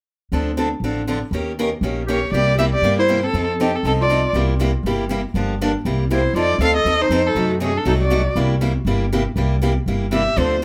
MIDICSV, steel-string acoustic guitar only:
0, 0, Header, 1, 2, 480
1, 0, Start_track
1, 0, Tempo, 251256
1, 611, Time_signature, 4, 2, 24, 8
1, 20334, End_track
2, 0, Start_track
2, 0, Title_t, "Steel-string acoustic guitar"
2, 0, Program_c, 0, 25
2, 613, Note_on_c, 0, 50, 48
2, 626, Note_on_c, 0, 53, 46
2, 632, Note_on_c, 0, 60, 50
2, 634, Note_on_c, 0, 62, 52
2, 645, Note_on_c, 0, 69, 57
2, 959, Note_off_c, 0, 50, 0
2, 966, Note_off_c, 0, 53, 0
2, 969, Note_off_c, 0, 60, 0
2, 969, Note_off_c, 0, 62, 0
2, 975, Note_off_c, 0, 69, 0
2, 1092, Note_on_c, 0, 53, 71
2, 1094, Note_on_c, 0, 60, 59
2, 1095, Note_on_c, 0, 50, 60
2, 1101, Note_on_c, 0, 62, 70
2, 1118, Note_on_c, 0, 69, 65
2, 1288, Note_off_c, 0, 53, 0
2, 1289, Note_off_c, 0, 60, 0
2, 1290, Note_off_c, 0, 50, 0
2, 1293, Note_off_c, 0, 62, 0
2, 1301, Note_off_c, 0, 69, 0
2, 1598, Note_on_c, 0, 50, 55
2, 1599, Note_on_c, 0, 53, 51
2, 1605, Note_on_c, 0, 60, 55
2, 1609, Note_on_c, 0, 62, 60
2, 1615, Note_on_c, 0, 69, 53
2, 1933, Note_off_c, 0, 50, 0
2, 1933, Note_off_c, 0, 53, 0
2, 1937, Note_off_c, 0, 60, 0
2, 1938, Note_off_c, 0, 62, 0
2, 1941, Note_off_c, 0, 69, 0
2, 2053, Note_on_c, 0, 50, 66
2, 2060, Note_on_c, 0, 53, 63
2, 2066, Note_on_c, 0, 60, 66
2, 2074, Note_on_c, 0, 62, 70
2, 2079, Note_on_c, 0, 69, 73
2, 2250, Note_off_c, 0, 50, 0
2, 2254, Note_off_c, 0, 53, 0
2, 2256, Note_off_c, 0, 60, 0
2, 2260, Note_off_c, 0, 62, 0
2, 2263, Note_off_c, 0, 69, 0
2, 2540, Note_on_c, 0, 51, 53
2, 2550, Note_on_c, 0, 61, 53
2, 2554, Note_on_c, 0, 58, 50
2, 2561, Note_on_c, 0, 67, 58
2, 2570, Note_on_c, 0, 70, 61
2, 2885, Note_off_c, 0, 51, 0
2, 2890, Note_off_c, 0, 61, 0
2, 2892, Note_off_c, 0, 58, 0
2, 2896, Note_off_c, 0, 67, 0
2, 2900, Note_off_c, 0, 70, 0
2, 3033, Note_on_c, 0, 51, 65
2, 3040, Note_on_c, 0, 58, 71
2, 3042, Note_on_c, 0, 61, 67
2, 3047, Note_on_c, 0, 67, 78
2, 3060, Note_on_c, 0, 70, 74
2, 3221, Note_off_c, 0, 51, 0
2, 3224, Note_off_c, 0, 58, 0
2, 3225, Note_off_c, 0, 61, 0
2, 3228, Note_off_c, 0, 67, 0
2, 3234, Note_off_c, 0, 70, 0
2, 3494, Note_on_c, 0, 51, 58
2, 3504, Note_on_c, 0, 58, 54
2, 3506, Note_on_c, 0, 61, 58
2, 3517, Note_on_c, 0, 67, 57
2, 3522, Note_on_c, 0, 70, 62
2, 3842, Note_off_c, 0, 51, 0
2, 3848, Note_off_c, 0, 58, 0
2, 3849, Note_off_c, 0, 61, 0
2, 3854, Note_off_c, 0, 67, 0
2, 3857, Note_off_c, 0, 70, 0
2, 3980, Note_on_c, 0, 51, 68
2, 3983, Note_on_c, 0, 58, 71
2, 3991, Note_on_c, 0, 61, 71
2, 4002, Note_on_c, 0, 67, 67
2, 4008, Note_on_c, 0, 70, 73
2, 4175, Note_off_c, 0, 51, 0
2, 4177, Note_off_c, 0, 58, 0
2, 4181, Note_off_c, 0, 61, 0
2, 4186, Note_off_c, 0, 67, 0
2, 4189, Note_off_c, 0, 70, 0
2, 4471, Note_on_c, 0, 48, 53
2, 4480, Note_on_c, 0, 55, 53
2, 4480, Note_on_c, 0, 58, 54
2, 4482, Note_on_c, 0, 64, 56
2, 4485, Note_on_c, 0, 67, 57
2, 4812, Note_off_c, 0, 48, 0
2, 4816, Note_off_c, 0, 55, 0
2, 4816, Note_off_c, 0, 58, 0
2, 4817, Note_off_c, 0, 64, 0
2, 4819, Note_off_c, 0, 67, 0
2, 4939, Note_on_c, 0, 55, 72
2, 4940, Note_on_c, 0, 48, 71
2, 4944, Note_on_c, 0, 58, 73
2, 4957, Note_on_c, 0, 64, 72
2, 4962, Note_on_c, 0, 67, 72
2, 5135, Note_off_c, 0, 55, 0
2, 5136, Note_off_c, 0, 48, 0
2, 5138, Note_off_c, 0, 58, 0
2, 5144, Note_off_c, 0, 64, 0
2, 5146, Note_off_c, 0, 67, 0
2, 5417, Note_on_c, 0, 48, 56
2, 5427, Note_on_c, 0, 55, 55
2, 5427, Note_on_c, 0, 58, 60
2, 5433, Note_on_c, 0, 64, 61
2, 5447, Note_on_c, 0, 67, 66
2, 5765, Note_off_c, 0, 48, 0
2, 5770, Note_off_c, 0, 55, 0
2, 5770, Note_off_c, 0, 58, 0
2, 5773, Note_off_c, 0, 64, 0
2, 5780, Note_off_c, 0, 67, 0
2, 5892, Note_on_c, 0, 48, 67
2, 5904, Note_on_c, 0, 55, 67
2, 5907, Note_on_c, 0, 64, 69
2, 5910, Note_on_c, 0, 58, 66
2, 5917, Note_on_c, 0, 67, 79
2, 6092, Note_off_c, 0, 48, 0
2, 6098, Note_off_c, 0, 55, 0
2, 6100, Note_off_c, 0, 64, 0
2, 6101, Note_off_c, 0, 58, 0
2, 6104, Note_off_c, 0, 67, 0
2, 6378, Note_on_c, 0, 53, 55
2, 6392, Note_on_c, 0, 60, 57
2, 6398, Note_on_c, 0, 63, 56
2, 6403, Note_on_c, 0, 69, 55
2, 6726, Note_off_c, 0, 53, 0
2, 6733, Note_off_c, 0, 60, 0
2, 6736, Note_off_c, 0, 63, 0
2, 6738, Note_off_c, 0, 69, 0
2, 6876, Note_on_c, 0, 53, 69
2, 6888, Note_on_c, 0, 60, 71
2, 6889, Note_on_c, 0, 63, 67
2, 6901, Note_on_c, 0, 69, 73
2, 7064, Note_off_c, 0, 53, 0
2, 7071, Note_off_c, 0, 60, 0
2, 7071, Note_off_c, 0, 63, 0
2, 7077, Note_off_c, 0, 69, 0
2, 7350, Note_on_c, 0, 53, 58
2, 7360, Note_on_c, 0, 60, 61
2, 7374, Note_on_c, 0, 63, 61
2, 7384, Note_on_c, 0, 69, 60
2, 7692, Note_off_c, 0, 53, 0
2, 7697, Note_off_c, 0, 60, 0
2, 7704, Note_off_c, 0, 63, 0
2, 7709, Note_off_c, 0, 69, 0
2, 7825, Note_on_c, 0, 53, 65
2, 7836, Note_on_c, 0, 60, 75
2, 7843, Note_on_c, 0, 63, 75
2, 7850, Note_on_c, 0, 69, 78
2, 8019, Note_off_c, 0, 53, 0
2, 8025, Note_off_c, 0, 60, 0
2, 8028, Note_off_c, 0, 63, 0
2, 8031, Note_off_c, 0, 69, 0
2, 8296, Note_on_c, 0, 48, 56
2, 8309, Note_on_c, 0, 55, 57
2, 8319, Note_on_c, 0, 64, 63
2, 8321, Note_on_c, 0, 58, 60
2, 8321, Note_on_c, 0, 67, 57
2, 8645, Note_off_c, 0, 48, 0
2, 8651, Note_off_c, 0, 55, 0
2, 8656, Note_off_c, 0, 64, 0
2, 8658, Note_off_c, 0, 58, 0
2, 8658, Note_off_c, 0, 67, 0
2, 8778, Note_on_c, 0, 48, 70
2, 8787, Note_on_c, 0, 55, 75
2, 8798, Note_on_c, 0, 64, 72
2, 8802, Note_on_c, 0, 58, 75
2, 8811, Note_on_c, 0, 67, 82
2, 8976, Note_off_c, 0, 48, 0
2, 8980, Note_off_c, 0, 55, 0
2, 8986, Note_off_c, 0, 64, 0
2, 8987, Note_off_c, 0, 58, 0
2, 8992, Note_off_c, 0, 67, 0
2, 9286, Note_on_c, 0, 55, 63
2, 9289, Note_on_c, 0, 48, 57
2, 9293, Note_on_c, 0, 64, 63
2, 9297, Note_on_c, 0, 58, 60
2, 9304, Note_on_c, 0, 67, 68
2, 9620, Note_off_c, 0, 55, 0
2, 9622, Note_off_c, 0, 48, 0
2, 9624, Note_off_c, 0, 64, 0
2, 9625, Note_off_c, 0, 58, 0
2, 9629, Note_off_c, 0, 67, 0
2, 9730, Note_on_c, 0, 48, 71
2, 9749, Note_on_c, 0, 55, 70
2, 9753, Note_on_c, 0, 58, 78
2, 9762, Note_on_c, 0, 67, 80
2, 9763, Note_on_c, 0, 64, 77
2, 9931, Note_off_c, 0, 48, 0
2, 9941, Note_off_c, 0, 55, 0
2, 9943, Note_off_c, 0, 58, 0
2, 9947, Note_off_c, 0, 67, 0
2, 9948, Note_off_c, 0, 64, 0
2, 10221, Note_on_c, 0, 50, 50
2, 10234, Note_on_c, 0, 53, 53
2, 10237, Note_on_c, 0, 58, 56
2, 10244, Note_on_c, 0, 62, 57
2, 10258, Note_on_c, 0, 67, 61
2, 10568, Note_off_c, 0, 50, 0
2, 10574, Note_off_c, 0, 53, 0
2, 10576, Note_off_c, 0, 58, 0
2, 10579, Note_off_c, 0, 62, 0
2, 10586, Note_off_c, 0, 67, 0
2, 10724, Note_on_c, 0, 53, 63
2, 10727, Note_on_c, 0, 50, 68
2, 10733, Note_on_c, 0, 62, 77
2, 10734, Note_on_c, 0, 58, 71
2, 10737, Note_on_c, 0, 67, 78
2, 10908, Note_off_c, 0, 53, 0
2, 10910, Note_off_c, 0, 50, 0
2, 10912, Note_off_c, 0, 62, 0
2, 10913, Note_off_c, 0, 58, 0
2, 10915, Note_off_c, 0, 67, 0
2, 11182, Note_on_c, 0, 48, 57
2, 11185, Note_on_c, 0, 55, 52
2, 11196, Note_on_c, 0, 58, 64
2, 11200, Note_on_c, 0, 64, 65
2, 11208, Note_on_c, 0, 67, 55
2, 11528, Note_off_c, 0, 48, 0
2, 11529, Note_off_c, 0, 55, 0
2, 11534, Note_off_c, 0, 58, 0
2, 11536, Note_off_c, 0, 64, 0
2, 11540, Note_off_c, 0, 67, 0
2, 11662, Note_on_c, 0, 48, 64
2, 11671, Note_on_c, 0, 55, 66
2, 11675, Note_on_c, 0, 58, 73
2, 11678, Note_on_c, 0, 64, 74
2, 11680, Note_on_c, 0, 67, 74
2, 11857, Note_off_c, 0, 48, 0
2, 11861, Note_off_c, 0, 55, 0
2, 11863, Note_off_c, 0, 58, 0
2, 11865, Note_off_c, 0, 64, 0
2, 11866, Note_off_c, 0, 67, 0
2, 12147, Note_on_c, 0, 53, 55
2, 12151, Note_on_c, 0, 60, 54
2, 12157, Note_on_c, 0, 63, 54
2, 12166, Note_on_c, 0, 69, 60
2, 12489, Note_off_c, 0, 53, 0
2, 12491, Note_off_c, 0, 60, 0
2, 12494, Note_off_c, 0, 63, 0
2, 12499, Note_off_c, 0, 69, 0
2, 12621, Note_on_c, 0, 53, 69
2, 12626, Note_on_c, 0, 60, 74
2, 12638, Note_on_c, 0, 63, 76
2, 12646, Note_on_c, 0, 69, 73
2, 12816, Note_off_c, 0, 53, 0
2, 12818, Note_off_c, 0, 60, 0
2, 12824, Note_off_c, 0, 63, 0
2, 12828, Note_off_c, 0, 69, 0
2, 13108, Note_on_c, 0, 53, 56
2, 13114, Note_on_c, 0, 60, 59
2, 13118, Note_on_c, 0, 63, 65
2, 13124, Note_on_c, 0, 69, 60
2, 13449, Note_off_c, 0, 53, 0
2, 13452, Note_off_c, 0, 60, 0
2, 13454, Note_off_c, 0, 63, 0
2, 13457, Note_off_c, 0, 69, 0
2, 13578, Note_on_c, 0, 53, 70
2, 13598, Note_on_c, 0, 60, 75
2, 13598, Note_on_c, 0, 63, 69
2, 13603, Note_on_c, 0, 69, 77
2, 13773, Note_off_c, 0, 53, 0
2, 13783, Note_off_c, 0, 60, 0
2, 13783, Note_off_c, 0, 63, 0
2, 13786, Note_off_c, 0, 69, 0
2, 14052, Note_on_c, 0, 48, 53
2, 14062, Note_on_c, 0, 54, 61
2, 14064, Note_on_c, 0, 57, 55
2, 14071, Note_on_c, 0, 63, 59
2, 14079, Note_on_c, 0, 66, 64
2, 14400, Note_off_c, 0, 48, 0
2, 14405, Note_off_c, 0, 54, 0
2, 14406, Note_off_c, 0, 57, 0
2, 14410, Note_off_c, 0, 63, 0
2, 14413, Note_off_c, 0, 66, 0
2, 14525, Note_on_c, 0, 48, 69
2, 14532, Note_on_c, 0, 54, 69
2, 14548, Note_on_c, 0, 57, 74
2, 14550, Note_on_c, 0, 63, 74
2, 14557, Note_on_c, 0, 66, 70
2, 14726, Note_off_c, 0, 48, 0
2, 14729, Note_off_c, 0, 54, 0
2, 14737, Note_off_c, 0, 57, 0
2, 14738, Note_off_c, 0, 63, 0
2, 14742, Note_off_c, 0, 66, 0
2, 15000, Note_on_c, 0, 48, 56
2, 15008, Note_on_c, 0, 54, 59
2, 15014, Note_on_c, 0, 57, 66
2, 15017, Note_on_c, 0, 63, 61
2, 15021, Note_on_c, 0, 66, 62
2, 15353, Note_off_c, 0, 48, 0
2, 15357, Note_off_c, 0, 54, 0
2, 15360, Note_off_c, 0, 57, 0
2, 15362, Note_off_c, 0, 63, 0
2, 15364, Note_off_c, 0, 66, 0
2, 15479, Note_on_c, 0, 48, 74
2, 15492, Note_on_c, 0, 54, 72
2, 15498, Note_on_c, 0, 57, 73
2, 15501, Note_on_c, 0, 66, 78
2, 15503, Note_on_c, 0, 63, 82
2, 15682, Note_off_c, 0, 48, 0
2, 15688, Note_off_c, 0, 54, 0
2, 15691, Note_off_c, 0, 57, 0
2, 15693, Note_off_c, 0, 66, 0
2, 15694, Note_off_c, 0, 63, 0
2, 15967, Note_on_c, 0, 48, 55
2, 15973, Note_on_c, 0, 55, 57
2, 15982, Note_on_c, 0, 58, 63
2, 15984, Note_on_c, 0, 64, 65
2, 15993, Note_on_c, 0, 67, 64
2, 16316, Note_off_c, 0, 48, 0
2, 16319, Note_off_c, 0, 55, 0
2, 16323, Note_off_c, 0, 58, 0
2, 16324, Note_off_c, 0, 64, 0
2, 16329, Note_off_c, 0, 67, 0
2, 16448, Note_on_c, 0, 55, 69
2, 16453, Note_on_c, 0, 48, 72
2, 16458, Note_on_c, 0, 58, 78
2, 16464, Note_on_c, 0, 64, 73
2, 16466, Note_on_c, 0, 67, 77
2, 16646, Note_off_c, 0, 55, 0
2, 16648, Note_off_c, 0, 48, 0
2, 16650, Note_off_c, 0, 58, 0
2, 16654, Note_off_c, 0, 64, 0
2, 16654, Note_off_c, 0, 67, 0
2, 16936, Note_on_c, 0, 48, 55
2, 16946, Note_on_c, 0, 55, 56
2, 16949, Note_on_c, 0, 58, 59
2, 16950, Note_on_c, 0, 64, 56
2, 16965, Note_on_c, 0, 67, 64
2, 17279, Note_off_c, 0, 48, 0
2, 17284, Note_off_c, 0, 55, 0
2, 17286, Note_off_c, 0, 58, 0
2, 17286, Note_off_c, 0, 64, 0
2, 17294, Note_off_c, 0, 67, 0
2, 17433, Note_on_c, 0, 48, 70
2, 17434, Note_on_c, 0, 55, 71
2, 17444, Note_on_c, 0, 58, 78
2, 17448, Note_on_c, 0, 64, 75
2, 17453, Note_on_c, 0, 67, 75
2, 17617, Note_off_c, 0, 48, 0
2, 17618, Note_off_c, 0, 55, 0
2, 17622, Note_off_c, 0, 58, 0
2, 17624, Note_off_c, 0, 64, 0
2, 17627, Note_off_c, 0, 67, 0
2, 17889, Note_on_c, 0, 48, 52
2, 17897, Note_on_c, 0, 55, 56
2, 17914, Note_on_c, 0, 58, 62
2, 17915, Note_on_c, 0, 64, 57
2, 17923, Note_on_c, 0, 67, 59
2, 18235, Note_off_c, 0, 48, 0
2, 18239, Note_off_c, 0, 55, 0
2, 18248, Note_off_c, 0, 58, 0
2, 18248, Note_off_c, 0, 64, 0
2, 18252, Note_off_c, 0, 67, 0
2, 18370, Note_on_c, 0, 48, 71
2, 18384, Note_on_c, 0, 55, 72
2, 18392, Note_on_c, 0, 58, 77
2, 18397, Note_on_c, 0, 64, 70
2, 18403, Note_on_c, 0, 67, 75
2, 18565, Note_off_c, 0, 48, 0
2, 18572, Note_off_c, 0, 55, 0
2, 18576, Note_off_c, 0, 58, 0
2, 18578, Note_off_c, 0, 64, 0
2, 18582, Note_off_c, 0, 67, 0
2, 18867, Note_on_c, 0, 48, 51
2, 18870, Note_on_c, 0, 55, 60
2, 18877, Note_on_c, 0, 58, 59
2, 18877, Note_on_c, 0, 64, 55
2, 18879, Note_on_c, 0, 67, 58
2, 19203, Note_off_c, 0, 48, 0
2, 19205, Note_off_c, 0, 55, 0
2, 19209, Note_off_c, 0, 58, 0
2, 19209, Note_off_c, 0, 64, 0
2, 19209, Note_off_c, 0, 67, 0
2, 19316, Note_on_c, 0, 48, 69
2, 19327, Note_on_c, 0, 55, 69
2, 19339, Note_on_c, 0, 64, 74
2, 19340, Note_on_c, 0, 67, 73
2, 19341, Note_on_c, 0, 58, 70
2, 19517, Note_off_c, 0, 48, 0
2, 19523, Note_off_c, 0, 55, 0
2, 19529, Note_off_c, 0, 64, 0
2, 19529, Note_off_c, 0, 67, 0
2, 19530, Note_off_c, 0, 58, 0
2, 19811, Note_on_c, 0, 50, 56
2, 19811, Note_on_c, 0, 53, 59
2, 19823, Note_on_c, 0, 60, 58
2, 19825, Note_on_c, 0, 69, 62
2, 19828, Note_on_c, 0, 62, 62
2, 20155, Note_off_c, 0, 50, 0
2, 20156, Note_off_c, 0, 53, 0
2, 20162, Note_off_c, 0, 60, 0
2, 20162, Note_off_c, 0, 69, 0
2, 20164, Note_off_c, 0, 62, 0
2, 20334, End_track
0, 0, End_of_file